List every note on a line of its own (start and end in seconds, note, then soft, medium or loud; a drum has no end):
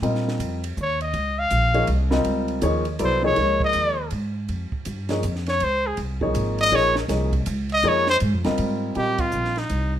0.02 0.38 A#2 medium
0.02 0.59 G3 medium
0.02 0.59 C4 medium
0.02 0.59 F4 medium
0.02 0.59 A#4 medium
0.02 0.59 D#5 medium
0.02 ride medium
0.15 snare soft
0.28 snare soft
0.39 0.76 F2 medium
0.39 hi-hat pedal medium
0.39 ride medium
0.64 ride medium
0.77 1.13 D#2 medium
0.77 hi-hat pedal medium
0.82 1.01 C#5 medium
1.01 1.41 D#5 medium
1.01 ride soft
1.14 1.50 C#2 medium
1.14 ride medium
1.39 1.89 F5 loud
1.50 1.87 A#1 medium
1.50 hi-hat pedal medium
1.50 ride medium
1.74 1.87 F3 medium
1.74 1.87 A#3 medium
1.74 1.87 D#4 medium
1.74 1.87 G#4 medium
1.74 1.87 C#5 medium
1.74 ride soft
1.87 2.24 C2 medium
1.87 ride medium
2.11 2.59 G3 medium
2.11 2.60 C4 medium
2.11 2.60 F4 medium
2.11 2.60 A#4 medium
2.11 2.60 D#5 medium
2.11 snare medium
2.24 2.62 C#2 medium
2.24 ride medium
2.48 ride soft
2.62 2.99 D#2 medium
2.62 2.84 F3 medium
2.62 2.84 A#3 medium
2.62 2.84 D#4 medium
2.62 2.84 G#4 medium
2.62 2.84 C#5 medium
2.62 hi-hat pedal medium
2.62 ride medium
2.85 ride soft
2.99 3.36 C2 medium
2.99 3.21 F#3 medium
2.99 3.21 B3 medium
2.99 3.21 E4 medium
2.99 3.22 A4 medium
2.99 3.21 D5 medium
2.99 hi-hat pedal medium
2.99 ride medium
3.04 3.24 C5 medium
3.23 3.35 F3 medium
3.23 3.36 A#3 medium
3.23 3.35 D#4 medium
3.23 3.36 G#4 medium
3.23 3.36 C#5 medium
3.23 3.60 C#5 medium
3.36 3.74 C#2 medium
3.36 3.93 F3 medium
3.36 3.93 A#3 soft
3.36 3.93 D#4 medium
3.36 3.94 G#4 medium
3.36 3.94 C#5 medium
3.36 ride medium
3.60 kick medium
3.64 4.10 D#5 medium
3.73 4.11 D#2 medium
3.73 hi-hat pedal medium
3.73 ride medium
4.11 4.48 G#2 medium
4.11 ride medium
4.49 4.71 F2 medium
4.49 ride medium
4.72 muted upright bass stroke soft
4.72 kick medium
4.85 5.22 G2 medium
4.85 hi-hat pedal medium
4.85 ride medium
5.09 5.22 F3 medium
5.09 5.22 A#3 soft
5.09 5.22 D#4 soft
5.09 5.22 G#4 medium
5.09 5.22 C#5 medium
5.09 snare medium
5.09 ride soft
5.23 5.60 F2 medium
5.23 hi-hat pedal medium
5.23 ride medium
5.35 snare soft
5.46 5.65 C#5 medium
5.46 snare soft
5.46 ride soft
5.60 5.97 C#2 medium
5.60 5.88 C5 medium
5.60 ride medium
5.87 5.99 G#4 medium
5.97 6.34 C2 medium
5.97 ride medium
6.21 6.69 F3 medium
6.21 6.69 A#3 medium
6.21 6.70 D#4 medium
6.21 6.70 G#4 medium
6.21 6.70 C#5 medium
6.21 kick medium
6.34 6.71 G#1 loud
6.34 hi-hat pedal medium
6.34 ride medium
6.58 6.77 D#5 loud
6.58 ride soft
6.71 7.08 A#1 medium
6.71 6.93 F3 medium
6.71 6.93 A#3 medium
6.71 6.93 D#4 medium
6.71 6.94 G#4 medium
6.71 6.94 C#5 medium
6.71 6.97 C#5 medium
6.71 ride medium
6.96 7.04 A#4 medium
6.96 snare medium
7.08 7.45 C2 medium
7.08 7.30 F3 medium
7.08 7.30 A#3 medium
7.08 7.30 D#4 soft
7.08 7.31 G#4 medium
7.08 7.31 C#5 medium
7.08 snare soft
7.08 hi-hat pedal medium
7.08 ride medium
7.33 kick medium
7.33 ride soft
7.46 7.83 C#2 loud
7.46 hi-hat pedal medium
7.46 ride medium
7.69 7.90 D#5 loud
7.69 ride soft
7.83 8.19 F2 medium
7.83 8.05 F3 medium
7.83 8.05 A#3 medium
7.83 8.05 D#4 medium
7.83 8.05 G#4 medium
7.83 8.05 C#5 medium
7.83 ride medium
7.88 8.09 C#5 medium
8.07 8.17 C5 loud
8.07 snare medium
8.20 8.33 G#2 loud
8.20 hi-hat pedal medium
8.20 ride medium
8.33 8.45 F2 medium
8.44 8.57 C#2 medium
8.44 8.92 G3 medium
8.44 8.93 C4 medium
8.44 8.93 F4 medium
8.44 8.93 A#4 medium
8.44 8.93 D#5 medium
8.44 snare soft
8.44 ride soft
8.58 8.94 G#2 medium
8.58 ride medium
8.95 9.32 A#2 medium
8.95 9.51 G3 medium
8.95 9.52 C4 soft
8.95 9.52 F4 soft
8.95 9.22 G4 medium
8.95 9.52 A#4 soft
8.95 9.52 D#5 medium
8.95 ride soft
9.18 9.60 F4 medium
9.18 kick medium
9.18 ride medium
9.32 9.69 A#1 medium
9.32 hi-hat pedal medium
9.45 snare soft
9.56 9.94 D#4 medium
9.56 snare soft
9.56 ride soft
9.69 9.99 C2 medium
9.69 hi-hat pedal soft
9.69 ride medium